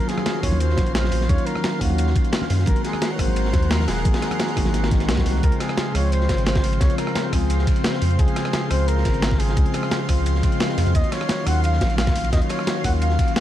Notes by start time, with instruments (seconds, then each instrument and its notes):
Already playing: tine electric piano D#3 F#3 A#3 C#4 F4, analog synth pad F#3 F5 C6, flugelhorn A#4
0.00 closed hi-hat
0.09 flugelhorn G#4, snare, closed hi-hat, ride
0.18 cross-stick, ride, high conga
0.26 snare, closed hi-hat, ride
0.35 high bongo
0.40 sub bass D#2, tine electric piano D#3 F#3 A#3, flugelhorn C#5, kick, cross-stick, open hi-hat, ride, high bongo
0.45 tine electric piano C#4 F4
0.52 high conga
0.60 flugelhorn C5, closed hi-hat, ride
0.70 snare
0.76 sub bass A#1, kick, snare, closed hi-hat, ride, high bongo, high conga
0.87 closed hi-hat
0.95 flugelhorn C5, snare, closed hi-hat, ride
1.03 snare, high conga
1.12 sub bass A#1, open hi-hat, ride
1.21 snare
1.26 sub bass D#2, tine electric piano D#3 F#3 A#3, flugelhorn C#5, kick, closed hi-hat, ride, high conga
1.31 tine electric piano C#4 F4
1.38 closed hi-hat
1.46 flugelhorn A#4, closed hi-hat, ride, high bongo
1.55 cross-stick, high conga
1.64 snare, closed hi-hat, ride
1.73 high bongo
1.78 sub bass D#2, tine electric piano D#3 F#3 A#3, flugelhorn F#4, kick, open hi-hat, ride, high bongo
1.83 tine electric piano C#4 F5
1.90 high conga
1.98 closed hi-hat, ride
2.07 snare
2.16 kick, closed hi-hat, ride, high conga
2.25 closed hi-hat
2.33 snare, closed hi-hat, ride
2.42 snare, high conga
2.50 sub bass F#2, snare, open hi-hat, ride
2.59 snare
2.64 sub bass G#1, tine electric piano D#3 G#3 A#3, flugelhorn A#4, analog synth pad A#4 F#5 C6, kick, closed hi-hat, ride, high conga
2.69 tine electric piano C4 F#4
2.76 closed hi-hat
2.84 flugelhorn G#4, snare, closed hi-hat, ride
2.93 cross-stick, ride, high conga
3.02 snare, closed hi-hat, ride
3.11 flugelhorn C#5, high bongo
3.16 sub bass G#1, tine electric piano D#3 G#3 A#3, flugelhorn C5, kick, cross-stick, open hi-hat, ride, high bongo
3.21 tine electric piano C4 F#4
3.28 high conga
3.36 closed hi-hat, ride
3.45 snare
3.53 sub bass D#2, kick, snare, closed hi-hat, ride, high bongo, high conga
3.62 closed hi-hat
3.71 flugelhorn A#4, snare, closed hi-hat, ride
3.79 snare, high conga
3.88 sub bass D#1, flugelhorn G#4, snare, open hi-hat, ride
3.97 snare
4.02 sub bass G#1, tine electric piano D#3 G#3 A#3, kick, closed hi-hat, ride, high conga
4.07 tine electric piano C4 F#4
4.14 snare, closed hi-hat, ride
4.22 cross-stick, snare, closed hi-hat, high bongo
4.31 cross-stick, closed hi-hat, ride, high conga
4.40 snare, closed hi-hat, ride
4.48 snare, closed hi-hat, high bongo
4.55 sub bass G#1, tine electric piano D#3 G#3 A#3 C4 F#4, kick, cross-stick, open hi-hat, ride, high bongo
4.65 snare, high conga
4.74 snare, closed hi-hat, ride
4.84 snare, ride
4.90 tine electric piano D#3 G#3 A#3 C4 F#4, kick, snare, closed hi-hat, high conga
5.00 snare, closed hi-hat, ride, high bongo
5.09 sub bass C2, snare, closed hi-hat, ride
5.13 tine electric piano D#3, snare, ride
5.17 tine electric piano G#3 A#3 C4 F#4, kick, snare, ride, high conga
5.26 sub bass C2, snare, open hi-hat, ride
5.36 snare
5.40 sub bass C#2, tine electric piano C#3 F3 G#3, analog synth pad C4 F5 C6, flugelhorn A#4, kick, closed hi-hat, ride
5.45 tine electric piano C4 F4
5.52 closed hi-hat
5.60 flugelhorn G#4, cross-stick, snare, closed hi-hat, ride
5.69 cross-stick, ride
5.77 snare, closed hi-hat, ride
5.92 sub bass C#2, tine electric piano C#3 F3 G#3, flugelhorn C#5, cross-stick, open hi-hat, ride
5.96 tine electric piano C4 F4, ride
6.12 flugelhorn C5, closed hi-hat, ride
6.21 snare
6.29 sub bass G#1, kick, snare, closed hi-hat, ride
6.38 closed hi-hat
6.46 flugelhorn C5, snare, closed hi-hat, ride
6.55 kick, snare, ride
6.64 sub bass G#1, open hi-hat, ride
6.73 closed hi-hat, ride
6.78 sub bass C#2, tine electric piano C#3 F3 G#3, flugelhorn C#5, kick, snare, closed hi-hat, ride
6.82 tine electric piano C4 F4
6.90 closed hi-hat
6.98 flugelhorn A#4, cross-stick, closed hi-hat, ride
7.07 cross-stick
7.15 snare, closed hi-hat, ride
7.30 sub bass C#2, tine electric piano C#3 F3 G#3, flugelhorn G#4, kick, cross-stick, open hi-hat, ride
7.34 tine electric piano C4 F4
7.50 closed hi-hat, ride
7.59 snare
7.67 kick, closed hi-hat, ride
7.76 closed hi-hat
7.84 snare, closed hi-hat, ride
7.93 snare
8.02 sub bass F2, open hi-hat, ride
8.11 closed hi-hat
8.16 sub bass C#2, tine electric piano C#3 F3 G#3, flugelhorn G#4, kick, closed hi-hat, ride
8.21 tine electric piano C4 F4
8.28 closed hi-hat
8.36 cross-stick, snare, closed hi-hat, ride
8.45 cross-stick, ride
8.53 snare, closed hi-hat, ride
8.68 sub bass C#2, tine electric piano C#3 F3 G#3, flugelhorn C5, cross-stick, open hi-hat, ride
8.72 tine electric piano C4 F4
8.88 flugelhorn A#4, closed hi-hat, ride
8.98 snare
9.05 sub bass G#1, kick, snare, closed hi-hat, ride
9.14 closed hi-hat
9.22 snare, closed hi-hat, ride
9.31 kick, snare
9.40 sub bass G#1, flugelhorn G#4, open hi-hat, ride
9.49 snare, closed hi-hat
9.54 sub bass C#2, tine electric piano C#3 F3 G#3, kick, closed hi-hat, ride
9.59 tine electric piano C4 F4
9.66 closed hi-hat
9.74 cross-stick, closed hi-hat, ride
9.83 cross-stick
9.91 snare, closed hi-hat, ride
10.07 sub bass C#2, tine electric piano C#3 F3 G#3 C4 F4, kick, cross-stick, open hi-hat, ride
10.26 closed hi-hat, ride
10.35 snare
10.42 tine electric piano C#3 F3 G#3 C4 F4, kick, closed hi-hat, ride
10.52 closed hi-hat
10.60 snare, closed hi-hat, ride
10.68 tine electric piano C#3 F3 G#3 C4 F4, snare
10.78 sub bass F2, snare, open hi-hat, ride
10.86 sub bass F2, snare, closed hi-hat
10.92 sub bass D#2, tine electric piano D#3 F#3 A#3, analog synth pad F#3, flugelhorn D#5, kick, closed hi-hat, ride
10.96 tine electric piano C#4 F4
11.04 closed hi-hat
11.12 flugelhorn C#5, cross-stick, snare, closed hi-hat, ride
11.21 cross-stick, ride
11.29 snare, closed hi-hat, ride
11.43 sub bass D#2, tine electric piano D#3 F#3 A#3, flugelhorn F#5, cross-stick, open hi-hat, ride
11.48 tine electric piano C#4 F4
11.64 flugelhorn F5, closed hi-hat, ride
11.73 snare
11.81 sub bass A#1, kick, snare, closed hi-hat, ride
11.90 closed hi-hat
11.98 flugelhorn F5, snare, closed hi-hat, ride
12.07 kick, snare, ride
12.16 sub bass A#1, open hi-hat, ride
12.24 closed hi-hat, ride
12.30 sub bass D#2, tine electric piano D#3 F#3 A#3, flugelhorn D#5, kick, snare, closed hi-hat, ride
12.34 tine electric piano C#4 F4
12.42 closed hi-hat
12.49 flugelhorn C#5, cross-stick, closed hi-hat, ride
12.59 cross-stick
12.67 snare, closed hi-hat, ride
12.81 sub bass D#2, tine electric piano D#3 F#3 A#3, flugelhorn F#5, kick, cross-stick, open hi-hat, ride
12.86 tine electric piano C#4 F4
13.02 flugelhorn F5, closed hi-hat, ride
13.10 snare
13.19 kick, closed hi-hat, ride
13.28 closed hi-hat
13.36 flugelhorn F5, snare, closed hi-hat, ride